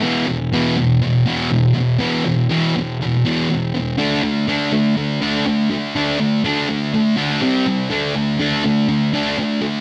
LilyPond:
\new Staff \with { instrumentName = "Distorted electric guitar" } { \clef bass \time 4/4 \key d \lydian \tempo 4 = 122 <e, b, e>8 <e, b,>8 <e, b, e>8 <e, b,>8 <e, b,>8 <e, b, e>8 <e, b,>8 <e, b,>8 | <e, b, e>8 <e, b,>8 <e, b, e>8 <e, b,>8 <e, b,>8 <e, b, e>8 <e, b,>8 <e, b,>8 | <d a d'>8 <d a>8 <d a d'>8 <d a>8 <d a>8 <d a d'>8 <d a>8 <d a>8 | <d a d'>8 <d a>8 <d a d'>8 <d a>8 <d a>8 <d a d'>8 <c g c'>8 <c g>8 |
<d a d'>8 <d a>8 <d a d'>8 <d a>8 <d a>8 <d a d'>8 <d a>8 <d a>8 | }